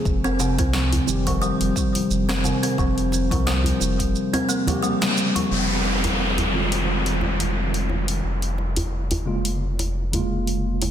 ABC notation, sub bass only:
X:1
M:4/4
L:1/16
Q:"Swing 16ths" 1/4=88
K:Fm
V:1 name="Sub bass" clef=bass
F,,,3 C,,2 z F,,,2 z F,,, z2 F,,,2 z2 | F,,,3 C,,2 z F,,,2 z8 | F,,,16 | F,,,16 |]